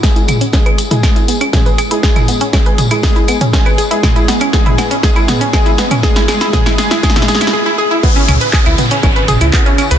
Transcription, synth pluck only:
\new Staff \with { instrumentName = "Synth pluck" } { \time 4/4 \key cis \minor \tempo 4 = 120 gis'16 e'16 b16 cis'16 cis'16 b'16 gis'16 e'16 gis'16 e'16 b16 cis'16 cis'16 b'16 gis'16 e'16 | gis'16 e'16 b16 cis'16 cis'16 b'16 gis'16 e'16 gis'16 e'16 b16 cis'16 cis'16 b'16 gis'16 e'16 | gis'16 e'16 b16 cis'16 gis'16 e'16 b16 cis'16 gis'16 e'16 b16 cis'16 gis'16 e'16 b16 cis'16 | gis'16 e'16 gis'16 e'16 gis'16 e'16 gis'16 e'16 gis'16 e'16 gis'16 e'16 gis'16 e'16 gis'16 e'16 |
b16 cis'16 cis'16 b'16 gis'16 e'16 b16 cis'16 cis'16 b'16 gis'16 e'16 b16 cis'16 cis'16 b'16 | }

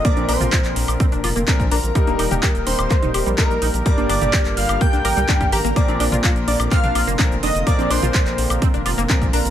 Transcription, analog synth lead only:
\new Staff \with { instrumentName = "Analog synth lead" } { \time 4/4 \key bes \major \tempo 4 = 126 d''8 c''2 r4 bes'8~ | bes'4. c''4. bes'4 | d''8 d''4 f''8 g''4. bes'8 | d''4 r8 d''8 f''4 r8 ees''8 |
d''8 c''2 r4 bes'8 | }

